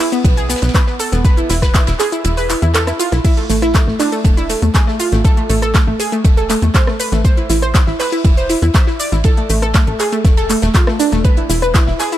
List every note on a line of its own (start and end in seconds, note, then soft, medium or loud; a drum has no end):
0.00 open hi-hat medium
0.12 0.20 B3 medium
0.12 closed hi-hat medium
0.12 shaker soft
0.25 0.55 B1 loud
0.25 0.32 B3 medium
0.25 kick loud
0.25 closed hi-hat medium
0.25 ride medium
0.25 shaker soft
0.37 0.45 G#4 medium
0.37 closed hi-hat soft
0.37 shaker soft
0.49 0.57 B3 medium
0.49 snare medium
0.49 open hi-hat loud
0.49 ride medium
0.49 shaker medium
0.56 snare medium
0.56 ride medium
0.62 0.70 B1 medium
0.62 0.70 B3 medium
0.62 snare medium
0.62 closed hi-hat medium
0.62 ride medium
0.62 shaker soft
0.68 snare medium
0.68 ride medium
0.75 0.82 B4 medium
0.75 kick loud
0.75 snare loud
0.75 clap loud
0.75 closed hi-hat medium
0.75 ride medium
0.75 shaker soft
0.87 0.95 B3 medium
0.87 snare medium
0.99 1.08 A4 medium
0.99 open hi-hat loud
0.99 ride medium
0.99 shaker medium
1.12 1.43 E1 loud
1.12 1.20 B3 medium
1.12 snare medium
1.12 closed hi-hat medium
1.12 shaker soft
1.25 1.33 B4 loud
1.25 kick loud
1.25 closed hi-hat medium
1.25 ride medium
1.25 shaker soft
1.37 1.45 E4 medium
1.37 closed hi-hat soft
1.37 shaker soft
1.50 1.80 E1 medium
1.50 1.57 E4 medium
1.50 snare loud
1.50 open hi-hat loud
1.50 ride medium
1.50 shaker medium
1.62 1.70 B4 loud
1.62 kick medium
1.62 cross-stick medium
1.62 snare loud
1.62 closed hi-hat medium
1.62 ride medium
1.62 shaker soft
1.74 1.82 E4 medium
1.74 kick loud
1.74 snare loud
1.74 clap loud
1.74 closed hi-hat medium
1.74 ride medium
1.74 shaker soft
1.87 1.95 E1 medium
1.87 1.95 E4 medium
1.87 snare loud
1.87 closed hi-hat soft
1.87 ride medium
1.87 shaker soft
1.99 2.07 G#4 medium
1.99 snare medium
1.99 clap medium
1.99 open hi-hat loud
1.99 ride medium
1.99 shaker medium
2.12 2.20 E4 medium
2.12 closed hi-hat medium
2.12 shaker soft
2.25 2.55 E1 medium
2.25 2.32 E4 medium
2.25 closed hi-hat medium
2.25 ride medium
2.25 shaker soft
2.37 2.45 B4 medium
2.37 open hi-hat medium
2.37 shaker soft
2.50 2.57 E4 medium
2.50 clap medium
2.50 open hi-hat loud
2.50 ride medium
2.50 shaker medium
2.62 2.93 E2 medium
2.62 2.70 E4 medium
2.62 closed hi-hat medium
2.62 shaker soft
2.74 2.82 A4 medium
2.74 snare loud
2.74 clap loud
2.74 closed hi-hat medium
2.74 ride medium
2.74 shaker soft
2.87 2.95 E4 medium
2.87 cross-stick medium
2.87 snare soft
2.87 closed hi-hat soft
2.87 shaker soft
2.99 3.07 F4 medium
2.99 open hi-hat loud
2.99 ride medium
2.99 shaker medium
3.12 3.20 B1 loud
3.12 3.20 E4 medium
3.12 cross-stick medium
3.12 snare medium
3.12 closed hi-hat medium
3.12 shaker soft
3.24 3.32 E4 loud
3.24 kick loud
3.24 closed hi-hat medium
3.24 ride medium
3.24 crash medium
3.24 shaker soft
3.37 3.45 A3 medium
3.37 closed hi-hat soft
3.37 ride soft
3.49 3.80 A1 loud
3.49 3.57 A3 medium
3.49 snare medium
3.49 open hi-hat loud
3.49 ride medium
3.49 shaker medium
3.62 3.70 E4 medium
3.62 cross-stick medium
3.62 closed hi-hat medium
3.62 shaker soft
3.75 3.82 A3 medium
3.75 kick loud
3.75 snare loud
3.75 clap loud
3.75 closed hi-hat medium
3.75 ride medium
3.75 shaker soft
3.87 3.95 A1 medium
3.87 3.95 A3 medium
3.87 snare soft
3.99 4.07 D4 loud
3.99 snare soft
3.99 clap medium
3.99 open hi-hat loud
3.99 open hi-hat medium
3.99 shaker medium
4.12 4.20 A3 medium
4.12 closed hi-hat medium
4.12 shaker soft
4.25 4.55 E1 loud
4.25 4.32 A3 medium
4.25 kick loud
4.25 closed hi-hat medium
4.25 ride medium
4.25 shaker soft
4.37 4.45 E4 loud
4.37 closed hi-hat soft
4.37 shaker soft
4.49 4.57 A3 medium
4.49 snare soft
4.49 open hi-hat loud
4.49 ride medium
4.49 shaker medium
4.62 4.70 E2 medium
4.62 4.70 A3 medium
4.62 closed hi-hat medium
4.62 shaker soft
4.75 4.83 G#4 medium
4.75 kick loud
4.75 snare loud
4.75 clap loud
4.75 closed hi-hat medium
4.75 ride medium
4.75 shaker soft
4.87 4.95 A3 medium
4.87 snare medium
5.00 5.08 F4 medium
5.00 open hi-hat loud
5.00 ride medium
5.00 shaker medium
5.12 5.43 A1 loud
5.12 5.20 A3 medium
5.12 snare soft
5.12 closed hi-hat medium
5.12 shaker soft
5.25 5.33 A4 loud
5.25 kick loud
5.25 closed hi-hat medium
5.25 ride medium
5.25 shaker soft
5.37 5.45 A3 medium
5.37 closed hi-hat soft
5.49 5.80 A1 loud
5.49 5.57 A3 medium
5.49 open hi-hat loud
5.49 ride medium
5.49 shaker medium
5.62 5.70 A4 loud
5.62 cross-stick medium
5.62 closed hi-hat medium
5.62 shaker soft
5.75 5.83 A3 medium
5.75 kick loud
5.75 snare loud
5.75 clap loud
5.75 closed hi-hat medium
5.75 ride medium
5.75 shaker soft
5.87 5.95 A1 medium
5.87 5.95 A3 medium
6.00 6.08 G#4 loud
6.00 open hi-hat loud
6.00 ride medium
6.00 shaker medium
6.12 6.20 A3 medium
6.12 closed hi-hat medium
6.12 shaker soft
6.24 6.55 E1 loud
6.24 6.33 A3 medium
6.24 kick loud
6.24 closed hi-hat medium
6.24 ride medium
6.24 shaker soft
6.37 6.45 A4 medium
6.37 closed hi-hat soft
6.37 shaker soft
6.49 6.58 A3 medium
6.49 clap medium
6.49 open hi-hat loud
6.49 ride medium
6.49 shaker medium
6.62 6.70 E2 loud
6.62 6.70 A3 medium
6.62 closed hi-hat medium
6.62 shaker soft
6.74 6.82 C5 medium
6.74 kick loud
6.74 snare loud
6.74 clap loud
6.74 closed hi-hat medium
6.74 ride medium
6.74 shaker soft
6.87 6.95 A3 medium
6.87 cross-stick medium
6.87 snare soft
7.00 7.08 B4 medium
7.00 open hi-hat loud
7.00 ride medium
7.00 shaker medium
7.12 7.43 A1 loud
7.12 7.20 A3 medium
7.12 snare medium
7.12 closed hi-hat medium
7.12 shaker soft
7.25 7.33 C5 loud
7.25 kick loud
7.25 closed hi-hat medium
7.25 ride medium
7.25 shaker soft
7.37 7.45 E4 medium
7.37 closed hi-hat soft
7.37 ride soft
7.50 7.80 A1 loud
7.50 7.58 E4 medium
7.50 snare medium
7.50 open hi-hat loud
7.50 ride medium
7.50 shaker medium
7.62 7.70 C5 medium
7.62 cross-stick medium
7.62 closed hi-hat medium
7.62 shaker soft
7.74 7.83 E4 medium
7.74 kick loud
7.74 snare loud
7.74 clap loud
7.74 closed hi-hat medium
7.74 ride medium
7.74 shaker soft
7.87 7.95 A1 medium
7.87 7.95 E4 medium
7.87 snare soft
8.00 8.08 B4 loud
8.00 snare soft
8.00 clap medium
8.00 open hi-hat loud
8.00 open hi-hat medium
8.00 shaker medium
8.12 8.20 E4 medium
8.12 closed hi-hat medium
8.12 shaker soft
8.24 8.55 E1 loud
8.24 8.33 E4 medium
8.24 kick loud
8.24 closed hi-hat medium
8.24 ride medium
8.24 shaker soft
8.37 8.45 C5 medium
8.37 closed hi-hat soft
8.37 shaker soft
8.49 8.58 E4 medium
8.49 snare soft
8.49 open hi-hat loud
8.49 ride medium
8.49 shaker medium
8.62 8.70 E2 medium
8.62 8.70 E4 medium
8.62 closed hi-hat medium
8.62 shaker soft
8.74 8.83 E5 medium
8.74 kick loud
8.74 snare loud
8.74 clap loud
8.74 closed hi-hat medium
8.74 ride medium
8.74 shaker soft
8.87 8.95 E4 medium
8.87 snare medium
9.00 9.07 D5 medium
9.00 open hi-hat loud
9.00 ride medium
9.00 shaker medium
9.12 9.43 A1 loud
9.12 9.20 E4 medium
9.12 snare medium
9.12 closed hi-hat medium
9.12 shaker soft
9.24 9.33 A4 loud
9.24 kick loud
9.24 closed hi-hat medium
9.24 ride loud
9.24 shaker soft
9.37 9.45 A3 medium
9.37 closed hi-hat soft
9.49 9.80 A1 loud
9.49 9.58 A3 medium
9.49 open hi-hat loud
9.49 ride medium
9.49 shaker medium
9.62 9.70 A4 medium
9.62 cross-stick medium
9.62 closed hi-hat soft
9.62 shaker soft
9.74 9.83 A3 medium
9.74 kick loud
9.74 snare loud
9.74 clap loud
9.74 closed hi-hat medium
9.74 ride medium
9.74 shaker soft
9.87 9.95 A1 medium
9.87 9.95 A3 medium
9.87 closed hi-hat soft
10.00 10.08 G#4 medium
10.00 clap medium
10.00 open hi-hat loud
10.00 ride medium
10.00 shaker medium
10.12 10.20 A3 medium
10.12 closed hi-hat soft
10.12 ride soft
10.12 shaker soft
10.24 10.55 E1 loud
10.24 10.33 A3 medium
10.24 kick loud
10.24 snare soft
10.24 closed hi-hat medium
10.24 ride medium
10.24 shaker soft
10.37 10.45 A4 loud
10.37 closed hi-hat soft
10.37 ride medium
10.37 shaker soft
10.49 10.58 A3 medium
10.49 clap medium
10.49 open hi-hat loud
10.49 ride soft
10.49 shaker medium
10.62 10.70 E1 medium
10.62 10.70 A3 medium
10.62 snare soft
10.62 closed hi-hat soft
10.62 ride medium
10.62 shaker soft
10.74 10.82 F4 medium
10.74 kick loud
10.74 snare loud
10.74 clap loud
10.74 closed hi-hat medium
10.74 ride medium
10.74 shaker soft
10.87 10.95 A3 medium
10.87 cross-stick loud
10.87 snare soft
11.00 11.07 D4 medium
11.00 open hi-hat loud
11.00 ride medium
11.00 shaker medium
11.12 11.43 E1 medium
11.12 11.20 A3 medium
11.12 snare medium
11.12 closed hi-hat medium
11.12 shaker soft
11.24 11.32 B4 loud
11.24 kick loud
11.24 closed hi-hat medium
11.24 ride medium
11.24 shaker soft
11.37 11.45 E4 medium
11.37 closed hi-hat soft
11.37 ride soft
11.49 11.80 E1 loud
11.49 11.57 E4 medium
11.49 snare medium
11.49 open hi-hat loud
11.49 ride medium
11.49 shaker medium
11.62 11.70 B4 loud
11.62 cross-stick medium
11.62 closed hi-hat medium
11.62 shaker soft
11.74 11.83 E4 medium
11.74 kick loud
11.74 snare loud
11.74 clap loud
11.74 closed hi-hat medium
11.74 ride loud
11.74 shaker soft
11.87 11.95 E1 medium
11.87 11.95 E4 medium
11.87 snare soft
11.99 12.08 G#4 loud
11.99 snare soft
11.99 clap medium
11.99 open hi-hat medium
11.99 open hi-hat loud
11.99 shaker medium
12.12 12.18 E4 medium
12.12 closed hi-hat medium
12.12 shaker soft